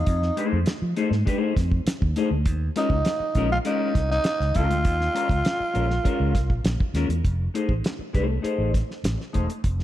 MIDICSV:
0, 0, Header, 1, 7, 480
1, 0, Start_track
1, 0, Tempo, 598205
1, 58, Time_signature, 4, 2, 24, 8
1, 7893, End_track
2, 0, Start_track
2, 0, Title_t, "Clean electric guitar"
2, 0, Program_c, 0, 27
2, 292, Note_on_c, 0, 57, 89
2, 299, Note_on_c, 0, 63, 90
2, 301, Note_on_c, 0, 68, 92
2, 306, Note_on_c, 0, 72, 99
2, 455, Note_off_c, 0, 57, 0
2, 458, Note_off_c, 0, 63, 0
2, 459, Note_off_c, 0, 68, 0
2, 461, Note_off_c, 0, 72, 0
2, 775, Note_on_c, 0, 57, 85
2, 779, Note_on_c, 0, 63, 85
2, 779, Note_on_c, 0, 68, 99
2, 785, Note_on_c, 0, 72, 93
2, 883, Note_off_c, 0, 72, 0
2, 887, Note_off_c, 0, 68, 0
2, 889, Note_off_c, 0, 63, 0
2, 898, Note_off_c, 0, 57, 0
2, 1006, Note_on_c, 0, 56, 83
2, 1012, Note_on_c, 0, 62, 93
2, 1015, Note_on_c, 0, 67, 90
2, 1022, Note_on_c, 0, 71, 103
2, 1102, Note_off_c, 0, 56, 0
2, 1102, Note_on_c, 0, 57, 83
2, 1109, Note_off_c, 0, 62, 0
2, 1109, Note_on_c, 0, 63, 93
2, 1110, Note_off_c, 0, 71, 0
2, 1110, Note_on_c, 0, 72, 103
2, 1112, Note_off_c, 0, 67, 0
2, 1112, Note_on_c, 0, 68, 90
2, 1232, Note_off_c, 0, 57, 0
2, 1235, Note_off_c, 0, 63, 0
2, 1237, Note_off_c, 0, 68, 0
2, 1240, Note_off_c, 0, 72, 0
2, 1734, Note_on_c, 0, 57, 83
2, 1741, Note_on_c, 0, 63, 90
2, 1746, Note_on_c, 0, 68, 94
2, 1750, Note_on_c, 0, 72, 95
2, 1845, Note_off_c, 0, 72, 0
2, 1850, Note_off_c, 0, 68, 0
2, 1853, Note_off_c, 0, 63, 0
2, 1857, Note_off_c, 0, 57, 0
2, 2211, Note_on_c, 0, 56, 85
2, 2216, Note_on_c, 0, 61, 93
2, 2219, Note_on_c, 0, 65, 91
2, 2221, Note_on_c, 0, 70, 102
2, 2336, Note_off_c, 0, 56, 0
2, 2338, Note_off_c, 0, 61, 0
2, 2339, Note_off_c, 0, 65, 0
2, 2341, Note_off_c, 0, 70, 0
2, 2699, Note_on_c, 0, 56, 86
2, 2702, Note_on_c, 0, 61, 93
2, 2706, Note_on_c, 0, 65, 87
2, 2711, Note_on_c, 0, 70, 93
2, 2799, Note_off_c, 0, 70, 0
2, 2805, Note_off_c, 0, 65, 0
2, 2808, Note_off_c, 0, 61, 0
2, 2819, Note_off_c, 0, 56, 0
2, 2927, Note_on_c, 0, 56, 90
2, 2930, Note_on_c, 0, 61, 96
2, 2935, Note_on_c, 0, 65, 89
2, 2937, Note_on_c, 0, 70, 96
2, 3152, Note_off_c, 0, 56, 0
2, 3153, Note_off_c, 0, 61, 0
2, 3155, Note_off_c, 0, 65, 0
2, 3157, Note_off_c, 0, 70, 0
2, 3645, Note_on_c, 0, 56, 74
2, 3650, Note_on_c, 0, 61, 82
2, 3656, Note_on_c, 0, 65, 90
2, 3661, Note_on_c, 0, 70, 89
2, 3758, Note_off_c, 0, 70, 0
2, 3761, Note_off_c, 0, 65, 0
2, 3770, Note_off_c, 0, 61, 0
2, 3810, Note_off_c, 0, 56, 0
2, 4126, Note_on_c, 0, 56, 97
2, 4128, Note_on_c, 0, 61, 91
2, 4131, Note_on_c, 0, 65, 104
2, 4137, Note_on_c, 0, 70, 115
2, 4252, Note_off_c, 0, 56, 0
2, 4253, Note_off_c, 0, 61, 0
2, 4255, Note_off_c, 0, 65, 0
2, 4258, Note_off_c, 0, 70, 0
2, 4601, Note_on_c, 0, 56, 74
2, 4603, Note_on_c, 0, 61, 77
2, 4609, Note_on_c, 0, 65, 84
2, 4615, Note_on_c, 0, 70, 91
2, 4714, Note_off_c, 0, 70, 0
2, 4716, Note_off_c, 0, 65, 0
2, 4725, Note_off_c, 0, 61, 0
2, 4730, Note_off_c, 0, 56, 0
2, 4844, Note_on_c, 0, 56, 89
2, 4850, Note_on_c, 0, 65, 90
2, 4851, Note_on_c, 0, 61, 85
2, 4854, Note_on_c, 0, 70, 92
2, 5070, Note_off_c, 0, 56, 0
2, 5073, Note_off_c, 0, 61, 0
2, 5073, Note_off_c, 0, 65, 0
2, 5075, Note_off_c, 0, 70, 0
2, 5574, Note_on_c, 0, 56, 73
2, 5580, Note_on_c, 0, 61, 87
2, 5585, Note_on_c, 0, 65, 78
2, 5588, Note_on_c, 0, 70, 91
2, 5681, Note_off_c, 0, 70, 0
2, 5689, Note_off_c, 0, 65, 0
2, 5692, Note_off_c, 0, 61, 0
2, 5697, Note_off_c, 0, 56, 0
2, 6051, Note_on_c, 0, 57, 84
2, 6056, Note_on_c, 0, 63, 79
2, 6061, Note_on_c, 0, 68, 81
2, 6063, Note_on_c, 0, 72, 88
2, 6176, Note_off_c, 0, 57, 0
2, 6178, Note_off_c, 0, 63, 0
2, 6181, Note_off_c, 0, 68, 0
2, 6181, Note_off_c, 0, 72, 0
2, 6525, Note_on_c, 0, 57, 87
2, 6532, Note_on_c, 0, 63, 84
2, 6532, Note_on_c, 0, 68, 86
2, 6539, Note_on_c, 0, 72, 103
2, 6630, Note_off_c, 0, 72, 0
2, 6637, Note_off_c, 0, 63, 0
2, 6637, Note_off_c, 0, 68, 0
2, 6691, Note_off_c, 0, 57, 0
2, 6757, Note_on_c, 0, 57, 78
2, 6763, Note_on_c, 0, 63, 77
2, 6765, Note_on_c, 0, 68, 76
2, 6770, Note_on_c, 0, 72, 83
2, 6988, Note_off_c, 0, 57, 0
2, 6991, Note_off_c, 0, 63, 0
2, 6992, Note_off_c, 0, 68, 0
2, 6995, Note_off_c, 0, 72, 0
2, 7487, Note_on_c, 0, 57, 70
2, 7488, Note_on_c, 0, 63, 72
2, 7492, Note_on_c, 0, 68, 78
2, 7496, Note_on_c, 0, 72, 85
2, 7601, Note_off_c, 0, 72, 0
2, 7607, Note_off_c, 0, 68, 0
2, 7609, Note_off_c, 0, 63, 0
2, 7615, Note_off_c, 0, 57, 0
2, 7893, End_track
3, 0, Start_track
3, 0, Title_t, "Tenor saxophone"
3, 0, Program_c, 1, 66
3, 0, Note_on_c, 1, 63, 78
3, 421, Note_off_c, 1, 63, 0
3, 2229, Note_on_c, 1, 63, 93
3, 2789, Note_off_c, 1, 63, 0
3, 2824, Note_on_c, 1, 65, 98
3, 2876, Note_off_c, 1, 65, 0
3, 2941, Note_on_c, 1, 63, 91
3, 3273, Note_off_c, 1, 63, 0
3, 3302, Note_on_c, 1, 63, 116
3, 3658, Note_on_c, 1, 65, 94
3, 3670, Note_off_c, 1, 63, 0
3, 5336, Note_off_c, 1, 65, 0
3, 7893, End_track
4, 0, Start_track
4, 0, Title_t, "Fingered electric bass"
4, 0, Program_c, 2, 33
4, 57, Note_on_c, 2, 41, 103
4, 235, Note_off_c, 2, 41, 0
4, 423, Note_on_c, 2, 41, 92
4, 510, Note_off_c, 2, 41, 0
4, 657, Note_on_c, 2, 53, 79
4, 746, Note_off_c, 2, 53, 0
4, 888, Note_on_c, 2, 44, 80
4, 981, Note_off_c, 2, 44, 0
4, 1257, Note_on_c, 2, 41, 92
4, 1435, Note_off_c, 2, 41, 0
4, 1621, Note_on_c, 2, 39, 91
4, 1708, Note_off_c, 2, 39, 0
4, 1853, Note_on_c, 2, 38, 81
4, 1970, Note_off_c, 2, 38, 0
4, 1970, Note_on_c, 2, 39, 100
4, 2150, Note_off_c, 2, 39, 0
4, 2326, Note_on_c, 2, 37, 89
4, 2418, Note_off_c, 2, 37, 0
4, 2690, Note_on_c, 2, 34, 100
4, 2870, Note_off_c, 2, 34, 0
4, 3171, Note_on_c, 2, 36, 104
4, 3351, Note_off_c, 2, 36, 0
4, 3533, Note_on_c, 2, 37, 85
4, 3622, Note_off_c, 2, 37, 0
4, 3655, Note_on_c, 2, 37, 91
4, 3744, Note_off_c, 2, 37, 0
4, 3772, Note_on_c, 2, 38, 94
4, 3891, Note_off_c, 2, 38, 0
4, 3891, Note_on_c, 2, 39, 94
4, 4070, Note_off_c, 2, 39, 0
4, 4250, Note_on_c, 2, 37, 91
4, 4340, Note_off_c, 2, 37, 0
4, 4618, Note_on_c, 2, 34, 86
4, 4795, Note_off_c, 2, 34, 0
4, 4975, Note_on_c, 2, 37, 88
4, 5094, Note_off_c, 2, 37, 0
4, 5094, Note_on_c, 2, 36, 93
4, 5216, Note_off_c, 2, 36, 0
4, 5216, Note_on_c, 2, 34, 95
4, 5305, Note_off_c, 2, 34, 0
4, 5330, Note_on_c, 2, 34, 87
4, 5421, Note_off_c, 2, 34, 0
4, 5568, Note_on_c, 2, 39, 84
4, 5659, Note_off_c, 2, 39, 0
4, 5689, Note_on_c, 2, 40, 89
4, 5780, Note_off_c, 2, 40, 0
4, 5815, Note_on_c, 2, 29, 102
4, 5993, Note_off_c, 2, 29, 0
4, 6168, Note_on_c, 2, 33, 81
4, 6260, Note_off_c, 2, 33, 0
4, 6538, Note_on_c, 2, 36, 88
4, 6716, Note_off_c, 2, 36, 0
4, 6888, Note_on_c, 2, 33, 73
4, 7070, Note_off_c, 2, 33, 0
4, 7251, Note_on_c, 2, 33, 74
4, 7343, Note_off_c, 2, 33, 0
4, 7502, Note_on_c, 2, 28, 74
4, 7590, Note_off_c, 2, 28, 0
4, 7736, Note_on_c, 2, 29, 97
4, 7893, Note_off_c, 2, 29, 0
4, 7893, End_track
5, 0, Start_track
5, 0, Title_t, "Muted clean electric guitar strokes"
5, 531, Note_on_c, 9, 29, 46
5, 611, Note_off_c, 9, 29, 0
5, 656, Note_on_c, 9, 29, 40
5, 736, Note_off_c, 9, 29, 0
5, 893, Note_on_c, 9, 29, 43
5, 973, Note_off_c, 9, 29, 0
5, 1248, Note_on_c, 9, 29, 34
5, 1328, Note_off_c, 9, 29, 0
5, 1367, Note_on_c, 9, 29, 49
5, 1447, Note_off_c, 9, 29, 0
5, 1610, Note_on_c, 9, 29, 47
5, 1690, Note_off_c, 9, 29, 0
5, 1855, Note_on_c, 9, 29, 51
5, 1935, Note_off_c, 9, 29, 0
5, 2450, Note_on_c, 9, 29, 41
5, 2530, Note_off_c, 9, 29, 0
5, 2574, Note_on_c, 9, 29, 50
5, 2654, Note_off_c, 9, 29, 0
5, 2808, Note_on_c, 9, 29, 43
5, 2888, Note_off_c, 9, 29, 0
5, 3167, Note_on_c, 9, 29, 41
5, 3247, Note_off_c, 9, 29, 0
5, 3284, Note_on_c, 9, 29, 46
5, 3364, Note_off_c, 9, 29, 0
5, 3530, Note_on_c, 9, 29, 48
5, 3610, Note_off_c, 9, 29, 0
5, 3768, Note_on_c, 9, 29, 56
5, 3848, Note_off_c, 9, 29, 0
5, 4364, Note_on_c, 9, 29, 39
5, 4445, Note_off_c, 9, 29, 0
5, 4488, Note_on_c, 9, 29, 58
5, 4568, Note_off_c, 9, 29, 0
5, 4723, Note_on_c, 9, 29, 52
5, 4804, Note_off_c, 9, 29, 0
5, 5089, Note_on_c, 9, 29, 42
5, 5169, Note_off_c, 9, 29, 0
5, 5211, Note_on_c, 9, 29, 37
5, 5291, Note_off_c, 9, 29, 0
5, 5454, Note_on_c, 9, 29, 48
5, 5535, Note_off_c, 9, 29, 0
5, 5691, Note_on_c, 9, 29, 55
5, 5771, Note_off_c, 9, 29, 0
5, 6301, Note_on_c, 9, 29, 45
5, 6381, Note_off_c, 9, 29, 0
5, 6413, Note_on_c, 9, 29, 44
5, 6493, Note_off_c, 9, 29, 0
5, 6640, Note_on_c, 9, 29, 32
5, 6720, Note_off_c, 9, 29, 0
5, 7007, Note_on_c, 9, 29, 39
5, 7087, Note_off_c, 9, 29, 0
5, 7127, Note_on_c, 9, 29, 40
5, 7207, Note_off_c, 9, 29, 0
5, 7368, Note_on_c, 9, 29, 44
5, 7448, Note_off_c, 9, 29, 0
5, 7611, Note_on_c, 9, 29, 38
5, 7691, Note_off_c, 9, 29, 0
5, 7893, End_track
6, 0, Start_track
6, 0, Title_t, "Muted fingered electric bass strokes"
6, 539, Note_on_c, 9, 29, 47
6, 619, Note_off_c, 9, 29, 0
6, 1490, Note_on_c, 9, 29, 44
6, 1571, Note_off_c, 9, 29, 0
6, 2567, Note_on_c, 9, 29, 41
6, 2647, Note_off_c, 9, 29, 0
6, 4494, Note_on_c, 9, 29, 44
6, 4575, Note_off_c, 9, 29, 0
6, 6410, Note_on_c, 9, 29, 39
6, 6490, Note_off_c, 9, 29, 0
6, 6771, Note_on_c, 9, 29, 45
6, 6851, Note_off_c, 9, 29, 0
6, 7893, End_track
7, 0, Start_track
7, 0, Title_t, "Drums"
7, 52, Note_on_c, 9, 42, 78
7, 56, Note_on_c, 9, 36, 108
7, 132, Note_off_c, 9, 42, 0
7, 136, Note_off_c, 9, 36, 0
7, 180, Note_on_c, 9, 38, 34
7, 261, Note_off_c, 9, 38, 0
7, 298, Note_on_c, 9, 42, 77
7, 379, Note_off_c, 9, 42, 0
7, 528, Note_on_c, 9, 42, 90
7, 540, Note_on_c, 9, 38, 106
7, 609, Note_off_c, 9, 42, 0
7, 620, Note_off_c, 9, 38, 0
7, 774, Note_on_c, 9, 42, 53
7, 854, Note_off_c, 9, 42, 0
7, 899, Note_on_c, 9, 38, 35
7, 980, Note_off_c, 9, 38, 0
7, 1019, Note_on_c, 9, 36, 84
7, 1020, Note_on_c, 9, 42, 80
7, 1100, Note_off_c, 9, 36, 0
7, 1100, Note_off_c, 9, 42, 0
7, 1256, Note_on_c, 9, 36, 97
7, 1260, Note_on_c, 9, 42, 71
7, 1266, Note_on_c, 9, 38, 40
7, 1336, Note_off_c, 9, 36, 0
7, 1340, Note_off_c, 9, 42, 0
7, 1346, Note_off_c, 9, 38, 0
7, 1376, Note_on_c, 9, 36, 85
7, 1457, Note_off_c, 9, 36, 0
7, 1497, Note_on_c, 9, 42, 107
7, 1505, Note_on_c, 9, 38, 127
7, 1577, Note_off_c, 9, 42, 0
7, 1585, Note_off_c, 9, 38, 0
7, 1621, Note_on_c, 9, 36, 95
7, 1701, Note_off_c, 9, 36, 0
7, 1734, Note_on_c, 9, 42, 76
7, 1814, Note_off_c, 9, 42, 0
7, 1970, Note_on_c, 9, 42, 83
7, 1972, Note_on_c, 9, 36, 112
7, 2050, Note_off_c, 9, 42, 0
7, 2053, Note_off_c, 9, 36, 0
7, 2212, Note_on_c, 9, 42, 87
7, 2293, Note_off_c, 9, 42, 0
7, 2326, Note_on_c, 9, 36, 98
7, 2406, Note_off_c, 9, 36, 0
7, 2446, Note_on_c, 9, 42, 85
7, 2458, Note_on_c, 9, 38, 113
7, 2526, Note_off_c, 9, 42, 0
7, 2538, Note_off_c, 9, 38, 0
7, 2686, Note_on_c, 9, 42, 53
7, 2691, Note_on_c, 9, 36, 81
7, 2766, Note_off_c, 9, 42, 0
7, 2771, Note_off_c, 9, 36, 0
7, 2927, Note_on_c, 9, 42, 77
7, 3008, Note_off_c, 9, 42, 0
7, 3170, Note_on_c, 9, 36, 94
7, 3173, Note_on_c, 9, 42, 76
7, 3178, Note_on_c, 9, 38, 39
7, 3251, Note_off_c, 9, 36, 0
7, 3253, Note_off_c, 9, 42, 0
7, 3259, Note_off_c, 9, 38, 0
7, 3300, Note_on_c, 9, 38, 35
7, 3380, Note_off_c, 9, 38, 0
7, 3402, Note_on_c, 9, 42, 101
7, 3410, Note_on_c, 9, 38, 127
7, 3482, Note_off_c, 9, 42, 0
7, 3490, Note_off_c, 9, 38, 0
7, 3536, Note_on_c, 9, 38, 35
7, 3616, Note_off_c, 9, 38, 0
7, 3648, Note_on_c, 9, 42, 82
7, 3657, Note_on_c, 9, 36, 85
7, 3728, Note_off_c, 9, 42, 0
7, 3738, Note_off_c, 9, 36, 0
7, 3777, Note_on_c, 9, 42, 57
7, 3857, Note_off_c, 9, 42, 0
7, 3889, Note_on_c, 9, 42, 83
7, 3892, Note_on_c, 9, 36, 103
7, 3969, Note_off_c, 9, 42, 0
7, 3972, Note_off_c, 9, 36, 0
7, 4020, Note_on_c, 9, 38, 36
7, 4100, Note_off_c, 9, 38, 0
7, 4137, Note_on_c, 9, 42, 85
7, 4217, Note_off_c, 9, 42, 0
7, 4248, Note_on_c, 9, 36, 93
7, 4259, Note_on_c, 9, 42, 48
7, 4329, Note_off_c, 9, 36, 0
7, 4339, Note_off_c, 9, 42, 0
7, 4371, Note_on_c, 9, 42, 85
7, 4383, Note_on_c, 9, 38, 112
7, 4452, Note_off_c, 9, 42, 0
7, 4463, Note_off_c, 9, 38, 0
7, 4613, Note_on_c, 9, 42, 55
7, 4693, Note_off_c, 9, 42, 0
7, 4738, Note_on_c, 9, 38, 36
7, 4819, Note_off_c, 9, 38, 0
7, 4856, Note_on_c, 9, 36, 86
7, 4857, Note_on_c, 9, 42, 71
7, 4937, Note_off_c, 9, 36, 0
7, 4937, Note_off_c, 9, 42, 0
7, 5093, Note_on_c, 9, 36, 98
7, 5097, Note_on_c, 9, 42, 78
7, 5102, Note_on_c, 9, 38, 36
7, 5174, Note_off_c, 9, 36, 0
7, 5177, Note_off_c, 9, 42, 0
7, 5182, Note_off_c, 9, 38, 0
7, 5215, Note_on_c, 9, 36, 88
7, 5295, Note_off_c, 9, 36, 0
7, 5333, Note_on_c, 9, 42, 97
7, 5340, Note_on_c, 9, 38, 127
7, 5413, Note_off_c, 9, 42, 0
7, 5420, Note_off_c, 9, 38, 0
7, 5460, Note_on_c, 9, 36, 94
7, 5540, Note_off_c, 9, 36, 0
7, 5573, Note_on_c, 9, 42, 79
7, 5576, Note_on_c, 9, 38, 36
7, 5654, Note_off_c, 9, 42, 0
7, 5656, Note_off_c, 9, 38, 0
7, 5697, Note_on_c, 9, 42, 64
7, 5777, Note_off_c, 9, 42, 0
7, 5814, Note_on_c, 9, 36, 93
7, 5814, Note_on_c, 9, 42, 70
7, 5894, Note_off_c, 9, 36, 0
7, 5894, Note_off_c, 9, 42, 0
7, 6059, Note_on_c, 9, 42, 80
7, 6139, Note_off_c, 9, 42, 0
7, 6169, Note_on_c, 9, 36, 88
7, 6250, Note_off_c, 9, 36, 0
7, 6293, Note_on_c, 9, 42, 85
7, 6305, Note_on_c, 9, 38, 99
7, 6374, Note_off_c, 9, 42, 0
7, 6386, Note_off_c, 9, 38, 0
7, 6536, Note_on_c, 9, 36, 79
7, 6536, Note_on_c, 9, 42, 55
7, 6616, Note_off_c, 9, 36, 0
7, 6616, Note_off_c, 9, 42, 0
7, 6776, Note_on_c, 9, 42, 62
7, 6856, Note_off_c, 9, 42, 0
7, 7016, Note_on_c, 9, 36, 84
7, 7019, Note_on_c, 9, 42, 67
7, 7024, Note_on_c, 9, 38, 33
7, 7096, Note_off_c, 9, 36, 0
7, 7099, Note_off_c, 9, 42, 0
7, 7104, Note_off_c, 9, 38, 0
7, 7149, Note_on_c, 9, 38, 30
7, 7229, Note_off_c, 9, 38, 0
7, 7256, Note_on_c, 9, 42, 101
7, 7264, Note_on_c, 9, 38, 111
7, 7336, Note_off_c, 9, 42, 0
7, 7344, Note_off_c, 9, 38, 0
7, 7388, Note_on_c, 9, 38, 27
7, 7469, Note_off_c, 9, 38, 0
7, 7496, Note_on_c, 9, 42, 71
7, 7504, Note_on_c, 9, 36, 74
7, 7577, Note_off_c, 9, 42, 0
7, 7584, Note_off_c, 9, 36, 0
7, 7620, Note_on_c, 9, 42, 54
7, 7701, Note_off_c, 9, 42, 0
7, 7735, Note_on_c, 9, 42, 76
7, 7736, Note_on_c, 9, 36, 94
7, 7815, Note_off_c, 9, 42, 0
7, 7816, Note_off_c, 9, 36, 0
7, 7859, Note_on_c, 9, 38, 32
7, 7893, Note_off_c, 9, 38, 0
7, 7893, End_track
0, 0, End_of_file